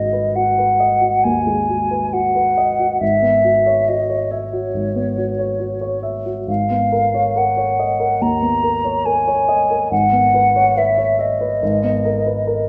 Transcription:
0.00 1.20 G#1 soft
0.00 1.47 G#3 soft
0.00 0.27 F#4 soft
0.00 0.37 D#5 medium
0.13 0.49 B4 soft
0.35 0.71 F#4 soft
0.35 1.25 F#5 medium
0.58 0.93 B4 soft
0.80 1.15 D#5 soft
1.01 1.37 F#4 soft
1.23 1.60 D#2 soft
1.23 2.14 G#5 medium
1.47 1.82 G#3 soft
1.69 2.05 F#4 soft
1.91 2.26 B4 soft
2.13 2.48 F#4 soft
2.13 2.99 F#5 medium
2.35 2.70 B4 soft
2.58 2.93 D#5 soft
2.79 3.01 F#4 soft
3.00 4.71 G#1 soft
3.00 3.89 E5 medium
3.22 3.58 B3 soft
3.44 3.80 F#4 soft
3.66 4.02 C#5 soft
3.88 4.23 F#4 soft
3.88 4.32 D#5 medium
4.10 4.45 C#5 soft
4.31 6.03 C#5 medium
4.31 4.66 E5 soft
4.53 4.88 F#4 soft
4.74 6.44 G#1 soft
4.96 5.30 B3 soft
5.18 5.52 F#4 soft
5.39 5.73 C#5 soft
5.59 5.95 F#4 soft
5.81 6.17 C#5 soft
6.03 6.39 E5 soft
6.25 6.48 F#4 soft
6.47 8.17 G#1 soft
6.47 7.39 F5 medium
6.70 7.06 B3 soft
6.92 7.28 A#4 soft
7.14 7.49 C#5 soft
7.36 7.70 A#4 soft
7.36 8.23 F#5 medium
7.57 7.91 C#5 soft
7.80 8.13 D#5 soft
8.00 8.34 A#4 soft
8.21 8.55 D#2 soft
8.21 9.07 A#5 medium
8.42 8.76 B3 soft
8.63 8.97 A#4 soft
8.84 9.18 C#5 soft
9.05 9.40 A#4 soft
9.05 9.90 G#5 medium
9.28 9.62 C#5 soft
9.49 9.83 D#5 soft
9.70 9.92 A#4 soft
9.91 11.57 G#1 soft
9.91 10.79 F#5 medium
10.13 10.47 B3 soft
10.34 10.68 B4 soft
10.56 10.90 C#5 soft
10.77 11.11 B4 soft
10.77 11.22 E5 medium
10.98 11.32 C#5 soft
11.19 12.69 D#5 medium
11.19 11.53 E5 soft
11.41 11.62 B4 soft
11.62 12.69 G#1 soft
11.83 12.17 B3 soft
12.05 12.39 A#4 soft
12.26 12.60 B4 soft
12.47 12.69 A#4 soft

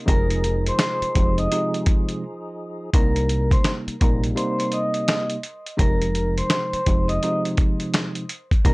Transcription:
0.00 2.90 D#4 medium
0.05 0.69 F1 loud
0.05 1.07 C3 loud
0.05 1.07 F3 medium
0.05 2.90 F3 medium
0.05 1.08 G#3 medium
0.05 1.08 D#4 loud
0.05 2.90 G#4 medium
0.05 0.62 A#4 loud
0.05 0.63 A#5 medium
0.05 kick loud
0.05 closed hi-hat loud
0.30 closed hi-hat medium
0.44 closed hi-hat medium
0.66 0.79 C5 medium
0.66 0.79 C6 medium
0.66 closed hi-hat medium
0.79 1.34 C5 medium
0.79 1.35 C6 medium
0.79 snare loud
0.79 snare medium
0.79 closed hi-hat medium
1.02 muted picked electric bass stroke soft
1.02 closed hi-hat medium
1.15 1.46 F1 loud
1.15 1.49 C3 loud
1.15 1.49 F3 medium
1.15 1.49 G#3 medium
1.15 1.49 D#4 loud
1.15 kick medium
1.15 closed hi-hat medium
1.38 1.70 D#5 medium
1.38 1.70 D#6 medium
1.38 closed hi-hat medium
1.51 2.22 C3 medium
1.51 2.23 F3 medium
1.51 2.23 G#3 medium
1.51 2.23 D#4 loud
1.51 closed hi-hat medium
1.74 closed hi-hat medium
1.86 kick medium
1.86 closed hi-hat medium
2.09 closed hi-hat medium
2.94 3.55 C2 loud
2.94 3.94 C3 medium
2.94 3.94 G3 medium
2.94 3.95 A#3 medium
2.94 3.95 D#4 loud
2.94 3.48 A#4 loud
2.94 3.49 A#5 medium
2.94 kick loud
2.94 closed hi-hat loud
3.16 closed hi-hat medium
3.29 closed hi-hat medium
3.51 3.63 C5 medium
3.51 3.64 C6 medium
3.51 kick loud
3.51 closed hi-hat medium
3.64 snare loud
3.64 snare medium
3.64 closed hi-hat medium
3.88 muted picked electric bass stroke soft
3.88 closed hi-hat medium
4.01 4.32 A#1 medium
4.01 4.34 C3 medium
4.01 4.34 G3 medium
4.01 4.34 A#3 medium
4.01 4.35 D#4 loud
4.01 4.21 A#4 medium
4.01 4.21 A#5 medium
4.01 kick medium
4.01 closed hi-hat medium
4.24 closed hi-hat medium
4.35 5.36 C3 medium
4.35 5.37 G3 medium
4.35 5.37 A#3 medium
4.35 5.37 D#4 loud
4.35 4.56 C5 medium
4.35 4.57 C6 medium
4.35 closed hi-hat medium
4.59 4.71 C5 medium
4.59 4.71 C6 medium
4.59 closed hi-hat soft
4.72 5.27 D#5 medium
4.72 5.27 D#6 medium
4.72 closed hi-hat medium
4.94 closed hi-hat medium
5.08 snare loud
5.08 snare medium
5.08 closed hi-hat medium
5.30 closed hi-hat medium
5.43 closed hi-hat medium
5.66 closed hi-hat medium
5.77 6.41 F1 loud
5.77 6.79 C3 medium
5.77 6.79 F3 medium
5.77 6.79 G#3 medium
5.77 6.79 D#4 loud
5.77 6.33 A#4 loud
5.77 6.34 A#5 medium
5.77 kick loud
5.77 closed hi-hat loud
6.02 closed hi-hat medium
6.15 closed hi-hat medium
6.37 6.49 C5 medium
6.37 6.50 C6 medium
6.37 closed hi-hat medium
6.50 7.05 C5 medium
6.50 7.06 C6 medium
6.50 snare loud
6.50 snare medium
6.50 closed hi-hat medium
6.73 muted picked electric bass stroke soft
6.73 closed hi-hat medium
6.86 7.17 F1 loud
6.86 7.20 C3 loud
6.86 7.20 F3 medium
6.86 7.20 G#3 medium
6.86 7.20 D#4 loud
6.86 kick medium
6.86 closed hi-hat medium
7.08 7.41 D#5 medium
7.08 7.41 D#6 medium
7.08 closed hi-hat soft
7.23 8.23 C3 loud
7.23 8.23 F3 medium
7.23 8.23 G#3 medium
7.23 8.24 D#4 loud
7.23 closed hi-hat medium
7.45 closed hi-hat medium
7.57 kick medium
7.57 closed hi-hat medium
7.80 closed hi-hat medium
7.94 snare loud
7.94 snare medium
7.94 closed hi-hat loud
8.15 closed hi-hat medium
8.29 closed hi-hat medium
8.51 kick loud
8.51 closed hi-hat medium
8.65 8.74 C2 loud
8.65 8.74 C3 medium
8.65 8.74 G3 medium
8.65 8.74 A#3 medium
8.65 8.74 D#4 loud
8.65 8.74 A#4 loud
8.65 8.74 A#5 medium
8.65 kick loud
8.65 closed hi-hat loud

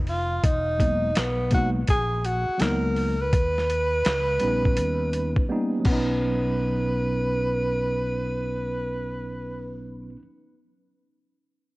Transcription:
0.00 0.40 F1 medium
0.07 0.46 F4 medium
0.07 open hi-hat soft
0.44 1.12 E1 medium
0.44 1.20 D#4 loud
0.44 kick loud
0.44 closed hi-hat medium
0.78 1.08 F#3 medium
0.78 1.08 G#3 medium
0.78 1.08 A#3 medium
0.78 1.09 B3 medium
0.78 1.09 D#4 medium
0.78 kick medium
0.78 closed hi-hat medium
1.15 1.85 B1 medium
1.15 1.53 B3 medium
1.15 snare loud
1.15 closed hi-hat medium
1.50 1.80 F#3 medium
1.50 1.80 G#3 medium
1.50 1.81 A#3 medium
1.50 1.81 B3 medium
1.50 1.81 D#4 medium
1.50 kick medium
1.50 closed hi-hat medium
1.54 1.70 F#4 medium
1.87 2.45 A#1 medium
1.87 2.27 G#4 loud
1.87 kick medium
1.87 closed hi-hat medium
2.24 2.63 F#4 medium
2.24 closed hi-hat medium
2.49 muted fretless electric bass stroke soft
2.58 3.33 C#2 medium
2.58 3.14 F#3 medium
2.58 3.15 G#3 medium
2.58 3.15 A#3 medium
2.58 3.15 B3 medium
2.58 3.16 D#4 medium
2.58 3.23 A#4 medium
2.58 snare medium
2.58 closed hi-hat medium
2.96 open hi-hat soft
3.22 5.50 B4 loud
3.33 4.02 D#2 medium
3.33 kick loud
3.33 closed hi-hat medium
3.58 snare soft
3.70 closed hi-hat medium
4.05 4.40 C#2 medium
4.05 snare loud
4.05 closed hi-hat medium
4.39 4.76 A#1 medium
4.39 5.44 G3 medium
4.39 5.45 B3 medium
4.39 5.45 C#4 medium
4.39 5.46 D#4 medium
4.39 closed hi-hat medium
4.65 kick medium
4.77 5.35 D#2 medium
4.77 closed hi-hat medium
5.13 closed hi-hat medium
5.36 muted fretless electric bass stroke soft
5.36 kick medium
5.48 5.85 G3 medium
5.48 5.86 A#3 medium
5.48 5.85 B3 medium
5.48 5.86 C#4 medium
5.48 5.87 D#4 medium
5.79 10.09 F#3 medium
5.85 10.15 B1 medium
5.85 10.16 B3 medium
5.85 9.87 B4 medium
5.85 kick medium
5.85 crash medium
5.89 10.19 C#4 medium
5.89 10.22 D#4 medium

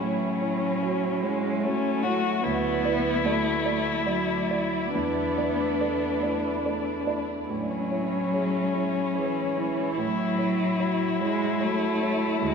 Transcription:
0.00 2.41 A2 soft
0.00 1.24 F#3 medium
0.00 4.94 F#3 soft
0.00 1.62 C#4 soft
0.00 2.40 E4 soft
0.00 2.40 C#5 soft
0.41 0.78 E4 soft
0.41 0.78 C#5 soft
0.83 1.19 F#4 soft
0.83 1.19 C#5 soft
1.22 1.65 G#3 medium
1.22 1.60 E4 soft
1.22 1.60 C#5 soft
1.63 2.44 A3 medium
1.63 2.05 C#4 medium
1.63 2.01 F#4 soft
1.63 2.01 C#5 soft
2.03 2.41 E4 soft
2.03 2.44 F#4 medium
2.03 2.41 C#5 soft
2.43 4.90 D2 medium
2.43 3.26 B3 medium
2.43 4.93 E4 medium
2.43 7.46 E4 medium
2.43 7.50 D5 soft
2.85 3.21 E4 soft
2.85 3.21 D5 soft
3.24 4.07 A3 medium
3.24 3.61 F#4 soft
3.24 3.61 D5 soft
3.66 4.02 E4 soft
3.66 4.02 D5 soft
4.06 4.94 F#3 medium
4.06 4.45 F#4 soft
4.06 4.46 D5 soft
4.50 4.90 E4 soft
4.50 4.91 D5 soft
4.93 7.46 E2 soft
4.93 7.50 A3 soft
4.93 7.04 B3 medium
4.93 7.25 D4 soft
5.38 5.76 E4 soft
5.38 5.77 D5 soft
5.81 6.19 A4 soft
5.81 6.20 D5 soft
6.23 6.61 E4 soft
6.23 6.61 D5 soft
6.66 7.04 A4 soft
6.66 7.04 D5 soft
7.07 7.45 E4 soft
7.07 7.46 D5 soft
7.49 9.95 A2 soft
7.49 9.19 F#3 medium
7.49 9.99 G#3 soft
7.49 9.95 C#4 soft
7.49 12.39 E4 soft
7.49 12.43 C#5 soft
7.91 8.29 E4 soft
7.91 8.29 C#5 soft
8.33 8.70 G#4 soft
8.33 8.71 C#5 soft
8.74 9.12 E4 soft
8.74 9.12 C#5 soft
9.15 10.01 E3 medium
9.15 9.53 G#4 soft
9.15 9.53 C#5 soft
9.57 9.95 E4 soft
9.57 9.95 C#5 soft
9.97 12.38 A2 soft
9.97 12.42 F#3 soft
9.97 11.21 F#3 medium
9.97 12.54 E4 medium
10.38 10.76 E4 soft
10.38 10.76 C#5 soft
10.79 11.17 F#4 soft
10.79 11.17 C#5 soft
11.21 11.64 G#3 medium
11.21 11.58 E4 soft
11.21 11.58 C#5 soft
11.60 12.42 A3 medium
11.60 11.98 F#4 soft
11.60 11.98 C#5 soft
12.02 12.39 E4 soft
12.02 12.39 C#5 soft
12.42 12.54 D2 medium
12.42 12.54 F#3 medium
12.42 12.54 G#3 loud
12.42 12.54 E4 medium
12.42 12.54 D5 medium

